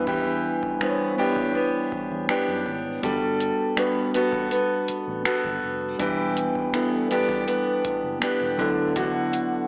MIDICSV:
0, 0, Header, 1, 6, 480
1, 0, Start_track
1, 0, Tempo, 740741
1, 47, Time_signature, 4, 2, 24, 8
1, 6269, End_track
2, 0, Start_track
2, 0, Title_t, "Tine electric piano"
2, 0, Program_c, 0, 4
2, 0, Control_c, 0, 64, 127
2, 0, Note_on_c, 0, 55, 89
2, 0, Note_on_c, 0, 59, 82
2, 0, Note_on_c, 0, 62, 84
2, 0, Note_on_c, 0, 64, 83
2, 0, Note_on_c, 0, 71, 99
2, 444, Note_off_c, 0, 55, 0
2, 446, Note_off_c, 0, 59, 0
2, 450, Note_off_c, 0, 62, 0
2, 452, Note_off_c, 0, 64, 0
2, 456, Note_off_c, 0, 71, 0
2, 517, Note_on_c, 0, 55, 76
2, 522, Note_on_c, 0, 59, 70
2, 528, Note_on_c, 0, 62, 69
2, 534, Note_on_c, 0, 64, 73
2, 539, Note_on_c, 0, 72, 71
2, 575, Note_off_c, 0, 72, 0
2, 581, Note_on_c, 0, 73, 88
2, 1378, Note_off_c, 0, 55, 0
2, 1381, Note_off_c, 0, 59, 0
2, 1384, Note_off_c, 0, 62, 0
2, 1387, Note_off_c, 0, 64, 0
2, 1411, Note_off_c, 0, 73, 0
2, 1957, Note_on_c, 0, 55, 80
2, 1964, Note_on_c, 0, 59, 71
2, 1970, Note_on_c, 0, 62, 76
2, 1976, Control_c, 0, 64, 0
2, 1976, Note_on_c, 0, 66, 77
2, 1981, Note_on_c, 0, 69, 88
2, 2095, Control_c, 0, 64, 127
2, 2390, Note_off_c, 0, 55, 0
2, 2394, Note_off_c, 0, 59, 0
2, 2397, Note_off_c, 0, 62, 0
2, 2400, Note_off_c, 0, 66, 0
2, 2402, Note_off_c, 0, 69, 0
2, 2437, Note_on_c, 0, 55, 79
2, 2442, Note_on_c, 0, 59, 73
2, 2448, Note_on_c, 0, 62, 72
2, 2454, Note_on_c, 0, 66, 73
2, 2460, Note_on_c, 0, 71, 87
2, 3299, Note_off_c, 0, 55, 0
2, 3301, Note_off_c, 0, 59, 0
2, 3304, Note_off_c, 0, 62, 0
2, 3307, Note_off_c, 0, 66, 0
2, 3310, Note_off_c, 0, 71, 0
2, 3877, Note_on_c, 0, 55, 83
2, 3883, Note_on_c, 0, 59, 74
2, 3888, Note_on_c, 0, 62, 78
2, 3894, Control_c, 0, 64, 0
2, 3894, Note_on_c, 0, 64, 74
2, 3900, Note_on_c, 0, 71, 91
2, 4000, Control_c, 0, 64, 127
2, 4310, Note_off_c, 0, 55, 0
2, 4313, Note_off_c, 0, 59, 0
2, 4316, Note_off_c, 0, 62, 0
2, 4319, Note_off_c, 0, 64, 0
2, 4322, Note_off_c, 0, 71, 0
2, 4355, Note_on_c, 0, 55, 78
2, 4361, Note_on_c, 0, 59, 74
2, 4368, Note_on_c, 0, 62, 76
2, 4373, Note_on_c, 0, 64, 72
2, 4378, Note_on_c, 0, 69, 85
2, 5218, Note_off_c, 0, 55, 0
2, 5221, Note_off_c, 0, 59, 0
2, 5224, Note_off_c, 0, 62, 0
2, 5227, Note_off_c, 0, 64, 0
2, 5229, Note_off_c, 0, 69, 0
2, 5556, Note_on_c, 0, 54, 89
2, 5562, Note_on_c, 0, 59, 81
2, 5567, Note_on_c, 0, 62, 80
2, 5573, Note_on_c, 0, 64, 83
2, 5577, Control_c, 0, 64, 0
2, 5578, Note_on_c, 0, 69, 97
2, 5706, Control_c, 0, 64, 127
2, 6204, Note_off_c, 0, 54, 0
2, 6207, Note_off_c, 0, 59, 0
2, 6209, Note_off_c, 0, 62, 0
2, 6213, Note_off_c, 0, 64, 0
2, 6215, Note_off_c, 0, 69, 0
2, 6269, End_track
3, 0, Start_track
3, 0, Title_t, "Steel-string acoustic guitar"
3, 0, Program_c, 1, 25
3, 0, Note_on_c, 1, 59, 62
3, 0, Note_on_c, 1, 64, 59
3, 45, Note_on_c, 1, 52, 81
3, 49, Note_on_c, 1, 67, 67
3, 524, Note_off_c, 1, 59, 0
3, 526, Note_on_c, 1, 59, 61
3, 763, Note_off_c, 1, 59, 0
3, 765, Note_on_c, 1, 59, 61
3, 767, Note_off_c, 1, 64, 0
3, 769, Note_on_c, 1, 62, 62
3, 771, Note_off_c, 1, 67, 0
3, 773, Note_on_c, 1, 67, 70
3, 1003, Note_off_c, 1, 59, 0
3, 1006, Note_on_c, 1, 59, 62
3, 1482, Note_off_c, 1, 59, 0
3, 1484, Note_on_c, 1, 59, 58
3, 1486, Note_off_c, 1, 62, 0
3, 1489, Note_off_c, 1, 67, 0
3, 1489, Note_on_c, 1, 62, 56
3, 1492, Note_on_c, 1, 67, 63
3, 1963, Note_off_c, 1, 52, 0
3, 1965, Note_on_c, 1, 55, 81
3, 1966, Note_off_c, 1, 67, 0
3, 1969, Note_on_c, 1, 69, 66
3, 2444, Note_off_c, 1, 59, 0
3, 2446, Note_on_c, 1, 59, 61
3, 2682, Note_off_c, 1, 59, 0
3, 2685, Note_on_c, 1, 59, 60
3, 2686, Note_off_c, 1, 62, 0
3, 2686, Note_off_c, 1, 69, 0
3, 2689, Note_on_c, 1, 66, 63
3, 2693, Note_on_c, 1, 69, 66
3, 2924, Note_off_c, 1, 59, 0
3, 2927, Note_on_c, 1, 59, 66
3, 3400, Note_off_c, 1, 66, 0
3, 3401, Note_off_c, 1, 59, 0
3, 3404, Note_off_c, 1, 69, 0
3, 3404, Note_on_c, 1, 59, 56
3, 3408, Note_on_c, 1, 66, 62
3, 3412, Note_on_c, 1, 69, 62
3, 3883, Note_off_c, 1, 55, 0
3, 3885, Note_on_c, 1, 52, 79
3, 3886, Note_off_c, 1, 69, 0
3, 3889, Note_on_c, 1, 67, 68
3, 3935, Note_off_c, 1, 66, 0
3, 4363, Note_off_c, 1, 59, 0
3, 4366, Note_on_c, 1, 59, 57
3, 4603, Note_off_c, 1, 59, 0
3, 4606, Note_off_c, 1, 67, 0
3, 4606, Note_on_c, 1, 59, 65
3, 4610, Note_on_c, 1, 62, 62
3, 4614, Note_on_c, 1, 67, 71
3, 4841, Note_off_c, 1, 59, 0
3, 4844, Note_on_c, 1, 59, 65
3, 5323, Note_off_c, 1, 59, 0
3, 5326, Note_off_c, 1, 67, 0
3, 5326, Note_on_c, 1, 59, 57
3, 5327, Note_off_c, 1, 62, 0
3, 5329, Note_on_c, 1, 62, 57
3, 5334, Note_on_c, 1, 67, 65
3, 5565, Note_on_c, 1, 50, 76
3, 5619, Note_off_c, 1, 67, 0
3, 5804, Note_off_c, 1, 50, 0
3, 5806, Note_on_c, 1, 50, 80
3, 5810, Note_on_c, 1, 66, 70
3, 5826, Note_off_c, 1, 52, 0
3, 6269, Note_off_c, 1, 50, 0
3, 6269, Note_off_c, 1, 59, 0
3, 6269, Note_off_c, 1, 62, 0
3, 6269, Note_off_c, 1, 66, 0
3, 6269, End_track
4, 0, Start_track
4, 0, Title_t, "Fingered electric bass"
4, 0, Program_c, 2, 33
4, 0, Note_on_c, 2, 40, 100
4, 319, Note_off_c, 2, 40, 0
4, 1370, Note_on_c, 2, 40, 83
4, 1471, Note_off_c, 2, 40, 0
4, 1610, Note_on_c, 2, 42, 83
4, 1711, Note_off_c, 2, 42, 0
4, 1727, Note_on_c, 2, 32, 87
4, 1931, Note_off_c, 2, 32, 0
4, 1968, Note_on_c, 2, 31, 102
4, 2274, Note_off_c, 2, 31, 0
4, 3290, Note_on_c, 2, 33, 90
4, 3391, Note_off_c, 2, 33, 0
4, 3529, Note_on_c, 2, 31, 91
4, 3630, Note_off_c, 2, 31, 0
4, 3650, Note_on_c, 2, 29, 86
4, 3853, Note_off_c, 2, 29, 0
4, 3886, Note_on_c, 2, 28, 93
4, 4192, Note_off_c, 2, 28, 0
4, 5211, Note_on_c, 2, 30, 81
4, 5311, Note_off_c, 2, 30, 0
4, 5451, Note_on_c, 2, 28, 85
4, 5566, Note_on_c, 2, 38, 96
4, 5576, Note_off_c, 2, 28, 0
4, 6076, Note_off_c, 2, 38, 0
4, 6269, End_track
5, 0, Start_track
5, 0, Title_t, "Muted fingered electric bass strokes"
5, 1247, Note_on_c, 9, 29, 43
5, 1311, Note_off_c, 9, 29, 0
5, 3171, Note_on_c, 9, 29, 47
5, 3236, Note_off_c, 9, 29, 0
5, 5087, Note_on_c, 9, 29, 47
5, 5152, Note_off_c, 9, 29, 0
5, 6269, End_track
6, 0, Start_track
6, 0, Title_t, "Drums"
6, 47, Note_on_c, 9, 36, 116
6, 112, Note_off_c, 9, 36, 0
6, 408, Note_on_c, 9, 36, 85
6, 473, Note_off_c, 9, 36, 0
6, 525, Note_on_c, 9, 26, 105
6, 590, Note_off_c, 9, 26, 0
6, 884, Note_on_c, 9, 36, 92
6, 949, Note_off_c, 9, 36, 0
6, 1246, Note_on_c, 9, 36, 85
6, 1311, Note_off_c, 9, 36, 0
6, 1484, Note_on_c, 9, 26, 114
6, 1549, Note_off_c, 9, 26, 0
6, 1725, Note_on_c, 9, 36, 76
6, 1790, Note_off_c, 9, 36, 0
6, 1965, Note_on_c, 9, 42, 75
6, 1966, Note_on_c, 9, 36, 116
6, 2030, Note_off_c, 9, 42, 0
6, 2031, Note_off_c, 9, 36, 0
6, 2207, Note_on_c, 9, 42, 64
6, 2271, Note_off_c, 9, 42, 0
6, 2444, Note_on_c, 9, 26, 106
6, 2445, Note_on_c, 9, 42, 71
6, 2509, Note_off_c, 9, 26, 0
6, 2510, Note_off_c, 9, 42, 0
6, 2685, Note_on_c, 9, 42, 69
6, 2750, Note_off_c, 9, 42, 0
6, 2803, Note_on_c, 9, 36, 92
6, 2868, Note_off_c, 9, 36, 0
6, 2924, Note_on_c, 9, 42, 71
6, 2989, Note_off_c, 9, 42, 0
6, 3164, Note_on_c, 9, 42, 53
6, 3229, Note_off_c, 9, 42, 0
6, 3404, Note_on_c, 9, 42, 70
6, 3405, Note_on_c, 9, 26, 115
6, 3469, Note_off_c, 9, 42, 0
6, 3470, Note_off_c, 9, 26, 0
6, 3527, Note_on_c, 9, 36, 84
6, 3591, Note_off_c, 9, 36, 0
6, 3885, Note_on_c, 9, 42, 77
6, 3886, Note_on_c, 9, 36, 114
6, 3950, Note_off_c, 9, 36, 0
6, 3950, Note_off_c, 9, 42, 0
6, 4126, Note_on_c, 9, 42, 64
6, 4191, Note_off_c, 9, 42, 0
6, 4247, Note_on_c, 9, 36, 91
6, 4312, Note_off_c, 9, 36, 0
6, 4366, Note_on_c, 9, 26, 111
6, 4367, Note_on_c, 9, 42, 69
6, 4431, Note_off_c, 9, 26, 0
6, 4432, Note_off_c, 9, 42, 0
6, 4606, Note_on_c, 9, 42, 69
6, 4671, Note_off_c, 9, 42, 0
6, 4723, Note_on_c, 9, 36, 97
6, 4788, Note_off_c, 9, 36, 0
6, 4845, Note_on_c, 9, 42, 70
6, 4910, Note_off_c, 9, 42, 0
6, 5085, Note_on_c, 9, 42, 53
6, 5086, Note_on_c, 9, 36, 88
6, 5150, Note_off_c, 9, 36, 0
6, 5150, Note_off_c, 9, 42, 0
6, 5324, Note_on_c, 9, 42, 69
6, 5325, Note_on_c, 9, 26, 105
6, 5389, Note_off_c, 9, 42, 0
6, 5390, Note_off_c, 9, 26, 0
6, 5565, Note_on_c, 9, 36, 78
6, 5629, Note_off_c, 9, 36, 0
6, 5806, Note_on_c, 9, 42, 77
6, 5807, Note_on_c, 9, 36, 109
6, 5871, Note_off_c, 9, 36, 0
6, 5871, Note_off_c, 9, 42, 0
6, 6047, Note_on_c, 9, 42, 65
6, 6112, Note_off_c, 9, 42, 0
6, 6269, End_track
0, 0, End_of_file